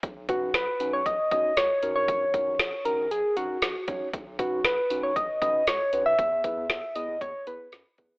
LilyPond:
<<
  \new Staff \with { instrumentName = "Soft synth lead" } { \time 4/4 \key dis \phrygian \tempo 4 = 117 r8 fis'8 b'8. cis''16 dis''8 dis''8 cis''8. cis''16~ | cis''4. ais'8 gis'8 fis'4 r8 | r8 fis'8 b'8. cis''16 dis''8 dis''8 cis''8. e''16~ | e''4. dis''8 cis''8 b'4 r8 | }
  \new Staff \with { instrumentName = "Tine electric piano" } { \time 4/4 \key dis \phrygian r8 <cis' dis' fis' b'>8 r8 <cis' dis' fis' b'>8 r8 <cis' dis' fis' cis''>8 r8 <cis' dis' fis' ais'>8~ | <cis' dis' fis' ais'>8 <cis' dis' fis' ais'>8 r8 <cis' dis' fis' ais'>8 r8 <cis' dis' fis' ais'>8 r8 <cis' dis' fis' cis''>8 | r8 <cis' dis' fis' b'>8 r8 <cis' dis' fis' b'>8 r8 <cis' dis' fis' b'>8 r8 <cis' dis' fis' b'>8 | r8 <b e' gis' b'>8 r8 <b e' gis' b'>8 r8 <b e' gis' b'>8 r8 <b e' gis' b'>8 | }
  \new Staff \with { instrumentName = "Analog synth bass" } { \clef bass \time 4/4 \key dis \phrygian b,,16 b,,16 r16 b,,16 b,,16 r16 b,,16 b,,16 b,,16 r16 b,,16 r16 cis,16 r16 ais,,8~ | ais,,16 ais,,16 r16 ais,,16 ais,,16 r16 ais,,16 ais,,16 ais,,16 r16 ais,,16 r16 ais,,16 r16 b,,16 r16 | b,,16 b,,16 r16 b,,16 b,,16 r16 b,,16 b,,16 b,,16 r16 b,,16 r16 cis,16 r16 ais,,16 r16 | e,16 e,16 r16 e,16 e,16 r16 e,16 e,16 e,16 r16 e,16 r16 fis,16 r16 e,16 r16 | }
  \new DrumStaff \with { instrumentName = "Drums" } \drummode { \time 4/4 <hh bd>8 <hh bd>8 <hh sn>8 hh8 <hh bd>8 <hh bd>8 <hh sn>8 hh8 | <hh bd>8 <hh bd>8 <hh sn>8 hh8 hh8 hh8 <hh sn>8 <hh bd>8 | <hh bd>8 <hh bd>8 <hh sn>8 hh8 <hh bd>8 <hh bd>8 <hh sn>8 hh8 | <hh bd>8 <hh bd>8 <hh sn>8 hh8 <hh bd>8 hh8 <hh sn>8 <hh bd>8 | }
>>